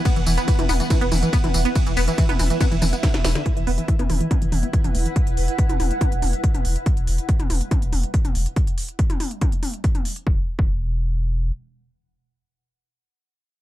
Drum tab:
RD |x---x---x---x---|x---x---x---x---|----------------|----------------|
HH |xxoxxxoxxxoxxxox|xxoxxxoxxxoxxxox|xxoxxxoxxxoxxxox|xxoxxxoxxxoxxxox|
TB |xxxxxxxxxxxxxxxx|xxxxxxxxxxxxxxxx|----------------|----------------|
SD |----------------|------------oooo|----------------|----------------|
T2 |-----oo-o-o--o--|-----oo-o-o--o--|-----oo-o-o--o--|-----oo-o-o--o--|
BD |o---o---o---o---|o---o---o---o---|o---o---o---o---|o---o---o---o---|

RD |----------------|----------------|----------------|----------------|
HH |xxoxxxoxxxoxxxox|xxoxxxoxxxoxxxox|----------------|----------------|
TB |----------------|----------------|----------------|----------------|
SD |----------------|----------------|----------------|----------------|
T2 |-----oo-o-o--o--|-----oo-o-o--o--|----------------|----------------|
BD |o---o---o---o---|o---o---o---o---|o--o------------|----------------|